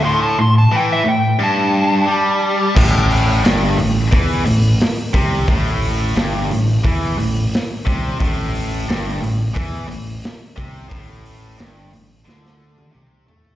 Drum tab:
CC |----------------|x---------------|----------------|----------------|
HH |----------------|--o-o-o-o-o-o-o-|o-o-o-o-o-o-o-o-|o-o-o-o-o-o-o-o-|
SD |----------------|----o-------o---|----o-------o---|----o-------o---|
T1 |----------------|----------------|----------------|----------------|
T2 |----------------|----------------|----------------|----------------|
FT |----------------|----------------|----------------|----------------|
BD |----------------|o-------o-----o-|o-------o-----o-|o-------o-----o-|

CC |----------------|
HH |o-o-o-o---------|
SD |----o---oo------|
T1 |-----------o----|
T2 |------------o---|
FT |--------------oo|
BD |o---------------|